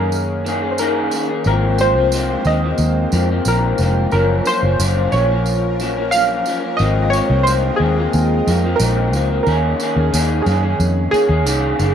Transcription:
Already playing: fingered electric bass F#2, analog synth pad D#3 C#4 G#4, clean electric guitar C#4 G#4, synth keys A#4
0.00 clean electric guitar A#3
0.12 tambourine
0.45 clean electric guitar D#3 A#3 C#4 G#4, tambourine
0.62 clean electric guitar A#3 C#4 G#4
0.71 synth keys C5
0.78 clean electric guitar D#3 A#3 C#4 G#4, synth keys A#4, tambourine
1.11 clean electric guitar D#3 A#3 C#4 G#4, tambourine
1.29 clean electric guitar A#3 C#4 G#4
1.44 fingered electric bass G#1, clean electric guitar G#2 F3 A#3 C4, analog synth pad G#3 F4 A#4 C5, synth keys A#4, tambourine
1.78 clean electric guitar G#2 F3 A#3 C4, synth keys C5, tambourine
1.95 fingered electric bass C2, clean electric guitar A#3 C4
1.99 clean electric guitar F3
2.12 clean electric guitar G#2 F3 A#3 C4, tambourine
2.45 fingered electric bass D#2, clean electric guitar G#2 F3 A#3, synth keys D#5, tambourine
2.49 clean electric guitar C4
2.62 clean electric guitar F3 A#3 C4
2.78 fingered electric bass D#2, tambourine
3.12 fingered electric bass F2, clean electric guitar G#2 F3 A#3 C4, tambourine
3.30 clean electric guitar F3 A#3 C4
3.45 fingered electric bass A#1, clean electric guitar G#2 F3 A#3, synth keys A#4, tambourine
3.49 clean electric guitar C4
3.78 fingered electric bass F1, clean electric guitar G#2 F3, tambourine
3.82 clean electric guitar A#3 C4
4.11 fingered electric bass F#1, clean electric guitar F#2 F3 A#3 C#4, analog synth pad F3, synth keys A#4, tambourine
4.45 clean electric guitar F#2 F3 A#3 C#4, synth keys C5, tambourine
4.62 fingered electric bass F#1, clean electric guitar F3 A#3 C#4
4.79 fingered electric bass F#1, clean electric guitar F#2 F3 A#3 C#4, tambourine
5.12 fingered electric bass A#1, clean electric guitar F#2 F3 A#3, synth keys C#5, tambourine
5.16 clean electric guitar C#4
5.30 clean electric guitar F3 A#3 C#4
5.46 tambourine
5.80 clean electric guitar F#2 F3 A#3 C#4, tambourine
5.97 clean electric guitar F3 A#3 C#4
6.11 clean electric guitar F#2 F3 A#3, synth keys F5, tambourine
6.16 clean electric guitar C#4
6.46 clean electric guitar F#2 F3 A#3 C#4, tambourine
6.62 clean electric guitar F3 A#3 C#4
6.77 fingered electric bass G#1, clean electric guitar G#2 F3 A#3, synth keys D#5, tambourine
6.81 analog synth pad G#3 F4 D#5, clean electric guitar C4
7.10 clean electric guitar G#2 F3, synth keys C#5, tambourine
7.15 clean electric guitar A#3 C4
7.30 fingered electric bass C2, clean electric guitar F3 A#3 C4
7.43 clean electric guitar G#2 F3, synth keys C5, tambourine
7.48 clean electric guitar A#3 C4
7.76 fingered electric bass D#2, clean electric guitar G#2 F3, synth keys G#4
7.81 clean electric guitar A#3 C4
7.97 clean electric guitar F3 A#3 C4
8.13 fingered electric bass D#2, tambourine
8.46 fingered electric bass F2, clean electric guitar G#2 F3 A#3 C4, tambourine
8.63 clean electric guitar F3 A#3 C4
8.76 clean electric guitar G#2, synth keys A#4, tambourine
8.80 fingered electric bass A#1, clean electric guitar F3 A#3 C4
9.13 fingered electric bass C#2, clean electric guitar G#2 F3 A#3 C4, tambourine
9.30 clean electric guitar F3 A#3 C4
9.43 fingered electric bass D#2, clean electric guitar D#3, synth keys A#4, tambourine
9.47 analog synth pad D#3 C#4 G#4, clean electric guitar A#3 C#4 G#4
9.80 clean electric guitar D#3 A#3 C#4 G#4, tambourine
9.96 fingered electric bass D#2, clean electric guitar A#3 C#4 G#4
10.12 fingered electric bass D#2, clean electric guitar D#3 A#3 C#4 G#4, tambourine
10.42 clean electric guitar D#3, synth keys G#4
10.46 fingered electric bass F#2, clean electric guitar A#3 C#4 G#4, tambourine
10.63 clean electric guitar A#3 C#4 G#4
10.80 fingered electric bass F2, tambourine
11.11 clean electric guitar D#3 A#3 C#4 G#4, synth keys G#4, muted fingered electric bass stroke, tambourine
11.29 fingered electric bass D#2, clean electric guitar A#3 C#4 G#4
11.45 fingered electric bass C2, clean electric guitar D#3 A#3 C#4 G#4, tambourine
11.79 fingered electric bass F#1, clean electric guitar D#3 A#3 C#4 G#4, tambourine

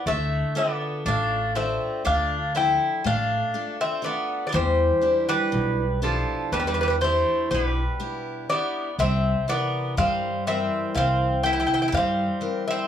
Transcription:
0.06 upright bass D2, steel-string acoustic guitar D3, bouzouki A3 E5
0.55 bouzouki B3 D5, steel-string acoustic guitar D4 F4 A4
1.05 upright bass A1, steel-string acoustic guitar A3, bouzouki D4 F5
1.55 bouzouki C4 E5, steel-string acoustic guitar D4 F4 A4
2.05 upright bass D2, steel-string acoustic guitar D3, bouzouki D4 F5
2.55 steel-string acoustic guitar F3 D4 A4, bouzouki E4 G5
3.04 upright bass A1, steel-string acoustic guitar A3, bouzouki D4 F5
3.54 steel-string acoustic guitar D4 F4 A4
3.81 bouzouki C4 E5
4.02 bouzouki B3 D5, steel-string acoustic guitar D4 F4 A4
4.47 bouzouki B3 D5
4.52 upright bass E2, steel-string acoustic guitar E3, bouzouki G3 C5
5.01 steel-string acoustic guitar D4 E4 G4
5.29 bouzouki G3 B4
5.52 upright bass B1, steel-string acoustic guitar B2
6.02 bouzouki F3 A4, steel-string acoustic guitar D4 E4 G4
6.52 upright bass E2, steel-string acoustic guitar E3, bouzouki G3 B4
6.60 bouzouki G3 B4
6.67 bouzouki G3 B4
6.74 bouzouki G3 B4
6.81 bouzouki G3 B4
6.88 bouzouki G3 B4
7.01 bouzouki A3 C5, steel-string acoustic guitar D4 E4 G4
7.51 upright bass B1, steel-string acoustic guitar B2, bouzouki G3 B4
8.00 steel-string acoustic guitar D4 E4 G4
8.49 bouzouki B3 D5, steel-string acoustic guitar D4 E4 G4
8.99 upright bass C2, steel-string acoustic guitar C3, bouzouki C4 E5
9.48 steel-string acoustic guitar E3 A#4, bouzouki B3 D5
9.97 upright bass G2, steel-string acoustic guitar G3, bouzouki C4 F5
10.47 steel-string acoustic guitar E3 C4 A#4, bouzouki C4 E5
10.94 upright bass C2, steel-string acoustic guitar C3, bouzouki C4 F5
11.43 steel-string acoustic guitar E3 C4 A#4, bouzouki E4 G5
11.53 bouzouki E4 G5
11.60 bouzouki E4 G5
11.67 bouzouki E4 G5
11.73 bouzouki E4 G5
11.82 bouzouki E4 G5
11.88 bouzouki E4 G5
11.92 upright bass G2, steel-string acoustic guitar G3, bouzouki F5
11.97 bouzouki C4
12.41 steel-string acoustic guitar E3 C4 A#4
12.68 bouzouki C4 E5

